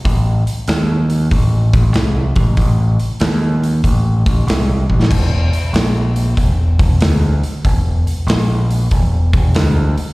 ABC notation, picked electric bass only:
X:1
M:4/4
L:1/8
Q:"Swing" 1/4=95
K:Edor
V:1 name="Picked electric bass" clef=bass
A,,, z _E,,2 A,,, A,,, =C,, A,,, | A,,, z _E,,2 A,,, A,,, =C,, A,,, | E,,, z _B,,,2 E,,, E,,, D,, z | E,,, z _B,,,2 E,,, E,,, D,, z |]